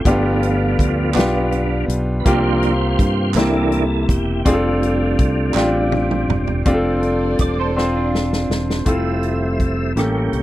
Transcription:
0.05 G1 G2 F3 A3 B3 D4 F4 G4, kick, closed hi-hat
0.43 closed hi-hat
0.79 D2, kick, closed hi-hat
1.14 B1 B3 D4 F4 G4, clap, closed hi-hat
1.19 snare
1.52 closed hi-hat
1.88 B1, closed hi-hat
2.20 B4
2.25 C2 C3 F3 A#3 C4 D4 F4 G4 C5, kick, closed hi-hat
2.63 closed hi-hat
2.99 G2, kick, closed hi-hat
3.34 C2 C3 E3 A#3 C4 D4 E4 G4, snare, clap, closed hi-hat
3.39 A4
3.72 closed hi-hat
4.09 E1 G4, kick, closed hi-hat
4.45 F1 G3 A3 C4 D4 F4 G#4, kick, closed hi-hat
4.50 F4 A4
4.83 closed hi-hat
5.19 C2, kick, closed hi-hat
5.54 A1 C4 D4 F4 G4, snare, clap
5.92 high tom
6.11 mid tom
6.28 E1, mid tom
6.47 floor tom
6.64 F1 G3 A3 C4 D4 F4 G4 A4 C5 D5, kick, closed hi-hat
6.74 A4
7.03 closed hi-hat
7.39 E1 D5, kick, closed hi-hat
7.60 A4 C5
7.76 C4 D4 F4 A4 C5, snare
7.96 D4 F4
8.15 snare
8.33 snare
8.50 E1, snare
8.70 snare
8.85 F1 G3 A3 C4 E4 F4 A4 E5, kick, closed hi-hat
9.23 closed hi-hat
9.60 kick, closed hi-hat
9.96 A1 A2 G3 A#3 C#4 G4 A4, cross-stick, closed hi-hat
10.33 C2, closed hi-hat

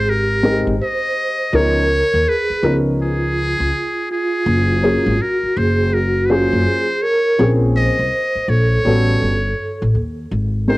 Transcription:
Already playing: G#1 C5
0.08 G4 A#4
0.43 G#3 C4 D#4 G4 A#4
0.67 G#1
0.82 C5 D#5
1.53 C#2 F3 B3 C#4 D#4 A#4 C#5
2.14 D#2
2.26 G#4 B4
2.50 muted upright bass stroke
2.63 C#2 F3 B3 C#4 D#4 A#4
3.00 F4 G#4
3.60 C#2
4.10 F4 G#4
4.46 F#1
4.83 F#3 A#3 C#4 F4 G#4
5.06 G#1
5.20 F#4 A#4
5.43 muted upright bass stroke
5.56 F#1 G#4 C5
5.93 F#4 A#4
6.25 F#4 B4
6.29 F#3 A#3 C#4 F4 G#4 C5
6.53 F#1
7.02 A#4 C#5
7.38 A#1 F3 A#3 C4 C#4 G#4
7.76 C5 D#5
7.99 C2
8.35 muted upright bass stroke
8.48 A#1 A4 C#5
8.85 A1 G3 B3 C#4 F#4 A4
9.22 G1
9.82 A1
9.95 D#2
10.31 G#1
10.68 G#3 C4 D#4 G4 A#4 C5

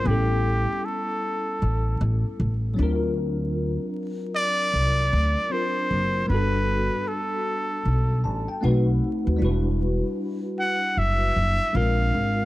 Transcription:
0.02 A1 G3 B3
0.06 C#4 E4 G4
0.10 A4
0.85 A4
1.62 A1
2.01 A1
2.40 A1
2.74 F#3 C4
2.78 D2 D4 F4
2.83 A#4
4.35 D5
4.74 C2
5.13 D2
5.49 F#3 C4 D4 F4 C5
5.53 A#4
5.91 F#1
6.25 G3 B3 B4
6.30 G1 D4 F#4
6.34 A4
7.08 A4
7.85 B1
8.24 A1 A5
8.48 G5
8.61 B1 A3 C4 D#4 F#4 F#5
8.65 B4
9.27 D#2
9.36 G3 D4 E4
9.42 E1 F#4 B4
10.59 F#5
10.97 F#1 E5
11.36 F#1
11.73 A#1 G#3 C4 D4 F4 F5
11.77 A#4
12.14 G#1

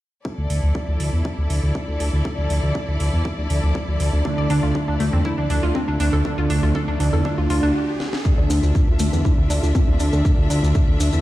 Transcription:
0.25 F3 E4 A4 D5, kick
0.38 D2
0.50 D2, open hi-hat
0.63 D2
0.75 kick
0.88 D2
1.00 D2, open hi-hat
1.13 E2
1.25 kick
1.38 D2
1.50 D2, open hi-hat
1.63 D2
1.75 kick
1.88 D2
2.00 D2, open hi-hat
2.13 D2
2.25 kick
2.38 D2
2.50 D2, open hi-hat
2.63 D2
2.75 kick
2.88 D2
3.00 D2, open hi-hat
3.13 E2
3.25 kick
3.38 D2
3.50 D2, open hi-hat
3.63 D2
3.75 kick
3.88 D2
4.00 D2, open hi-hat
4.13 D2
4.25 D3 A3 D4, kick, riser
4.38 D2 D5
4.50 D2 D4, open hi-hat
4.63 D2 F4
4.75 kick
4.88 D2 D4
5.00 D2 A3, open hi-hat
5.13 E2 C4
5.25 E4, kick
5.38 D2 D4
5.50 D2 D4, open hi-hat
5.63 D2 F4
5.75 C4, kick
5.88 D2 D4
6.00 D2 D3 A3 D4, open hi-hat
6.13 D2 A4
6.25 D3 A3 D4, kick
6.38 D2 F4
6.50 D2 D4, open hi-hat
6.63 D2 F4
6.75 A4, kick
6.88 D2 D4
7.00 D2 D4, open hi-hat
7.13 E2 A4
7.25 D4, kick
7.38 D2 F4
7.50 D2 F4, open hi-hat
7.63 D2 D4
8.00 snare
8.13 snare
8.25 D3 A3 D4 F4 A4 E5, kick, maracas
8.38 D2 D5
8.50 D2 D4, open hi-hat, maracas
8.63 D2 F4, maracas
8.75 kick, maracas
8.88 D2 D4
8.99 D2 A3, open hi-hat, maracas
9.13 E2 C4, maracas
9.25 E4, kick, maracas
9.38 D2 D4
9.50 D2 D4, open hi-hat, maracas
9.63 D2 F4, maracas
9.75 C4, kick, maracas
9.88 D2 D4
10.00 D2 D3 A3 D4, open hi-hat, maracas
10.13 D2 A4, maracas
10.25 D3 A3 D4, kick, maracas
10.38 D2 F4
10.50 D2 D4, open hi-hat, maracas
10.63 D2 F4, maracas
10.75 A4, kick, maracas
10.88 D2 D4
11.00 D2 D4, open hi-hat, maracas
11.13 E2 A4, maracas

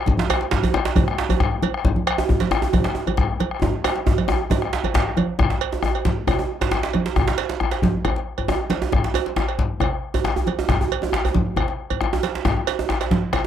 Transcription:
0.06 bombo low, djembe slap, high conga, low conga, djembe bass
0.18 djembe slap, high conga, djembe tone
0.30 bombo rim, cowbell, djembe bass
0.41 djembe slap
0.51 bombo low, djembe slap, djembe tone
0.63 cowbell, high conga, djembe bass
0.74 bombo rim, djembe slap, high conga, djembe bass
0.85 bombo rim, djembe slap, high conga
0.96 bombo low, cowbell, high conga, djembe tone, low conga, djembe bass
1.07 bombo rim, djembe slap, high conga
1.18 bombo rim, djembe slap
1.29 bombo rim, cowbell, djembe tone, high conga, djembe bass
1.40 bombo rim, bombo low, djembe slap
1.52 bombo rim, high conga
1.62 bombo rim, cowbell, djembe slap, djembe tone, high conga
1.74 bombo rim
1.85 bombo low, djembe slap, high conga, djembe bass, low conga
1.96 high conga, djembe tone
2.07 bombo rim, cowbell
2.18 djembe slap, djembe tone, high conga
2.29 bombo low, djembe slap, djembe tone
2.40 cowbell, djembe slap, high conga
2.51 bombo rim, djembe slap, djembe tone, djembe bass
2.62 bombo rim, djembe slap, djembe tone, high conga
2.73 bombo low, cowbell, djembe tone, high conga, low conga
2.84 bombo rim, djembe slap
2.95 bombo rim, djembe tone
3.07 bombo rim, cowbell, djembe tone, high conga, djembe bass
3.17 bombo rim, bombo low, djembe slap
3.30 bombo rim, high conga
3.40 bombo rim, cowbell, djembe slap, djembe tone, high conga
3.51 bombo rim
3.62 bombo low, djembe slap, djembe tone, high conga, djembe bass, low conga
3.73 djembe tone
3.84 bombo rim, cowbell, djembe tone
3.96 djembe slap, high conga
4.06 bombo low, djembe slap, djembe tone, high conga
4.18 bombo rim, cowbell, high conga
4.28 bombo rim, djembe slap, djembe tone, djembe bass
4.40 bombo rim, high conga
4.50 bombo low, cowbell, djembe tone, high conga, low conga
4.62 bombo rim, djembe slap
4.73 djembe slap, high conga
4.84 cowbell, djembe tone, high conga, djembe bass
4.94 bombo rim, bombo low, djembe slap
5.07 bombo rim, high conga
5.17 bombo rim, cowbell, djembe tone, high conga
5.29 high conga
5.39 bombo rim, bombo low, djembe slap, djembe bass, low conga
5.50 djembe slap, djembe tone, high conga
5.61 cowbell
5.72 djembe slap, djembe tone
5.83 bombo rim, djembe tone, djembe bass
5.94 bombo rim, cowbell
6.05 bombo low, djembe slap, high conga
6.27 bombo rim, cowbell, djembe tone, djembe bass, low conga
6.39 djembe slap, djembe tone
6.61 bombo low, cowbell, djembe slap, djembe tone, high conga
6.71 bombo rim, djembe slap, djembe bass
6.83 bombo rim, djembe slap
6.93 cowbell, djembe slap, djembe tone, high conga
7.06 bombo rim, djembe slap, high conga
7.16 bombo rim, bombo low, djembe slap, djembe tone, djembe bass, low conga
7.28 djembe slap, djembe tone, high conga
7.38 cowbell, djembe slap
7.49 djembe slap
7.60 bombo rim, djembe tone, djembe bass
7.71 bombo rim, cowbell, djembe slap
7.82 bombo low, djembe slap, djembe tone, high conga
8.05 bombo rim, cowbell, djembe tone, low conga, djembe bass
8.16 djembe slap
8.38 bombo low, cowbell, high conga, djembe tone
8.48 bombo rim, djembe slap, djembe tone, djembe bass
8.60 bombo rim, djembe slap
8.70 cowbell, djembe slap, high conga, djembe tone
8.82 bombo rim, djembe tone, high conga
8.92 bombo rim, bombo low, djembe slap, low conga, djembe bass
9.04 djembe slap, high conga, djembe tone
9.14 cowbell, djembe slap, djembe tone
9.26 djembe slap
9.36 bombo rim, djembe slap, djembe tone, djembe bass
9.48 bombo rim, cowbell
9.59 bombo low, djembe slap
9.80 bombo rim, cowbell, djembe tone, djembe bass, low conga
10.14 bombo low, cowbell, djembe tone, high conga
10.24 bombo rim, djembe slap, djembe bass
10.36 bombo rim, djembe slap, djembe bass
10.46 cowbell, djembe slap, djembe tone, high conga
10.58 bombo rim, djembe tone, high conga
10.69 bombo rim, bombo low, djembe slap, djembe bass, low conga
10.80 djembe tone, djembe bass
10.91 bombo rim, cowbell, djembe slap, high conga
11.02 djembe slap, high conga, djembe tone
11.12 bombo rim, djembe slap, djembe tone, high conga, djembe bass
11.14 djembe slap
11.24 bombo rim, cowbell, djembe bass
11.34 bombo rim, bombo low, djembe slap, high conga
11.46 bombo rim, djembe slap
11.56 bombo rim, cowbell, djembe tone, high conga, djembe bass, low conga
11.68 bombo rim, djembe slap
11.79 djembe slap
11.90 bombo low, cowbell, djembe slap, djembe tone
12.01 bombo rim, djembe slap, djembe bass
12.13 high conga, djembe tone
12.23 cowbell, djembe slap, high conga
12.34 bombo rim, djembe slap, high conga
12.45 bombo rim, bombo low, djembe slap, low conga, djembe bass
12.57 djembe tone, high conga
12.67 cowbell, djembe slap
12.79 djembe slap, djembe tone
12.89 bombo rim, djembe slap, djembe tone, djembe bass
13.00 bombo rim, cowbell, djembe slap
13.11 bombo low, djembe slap, high conga
13.33 bombo rim, cowbell, djembe slap, djembe tone, low conga, djembe bass

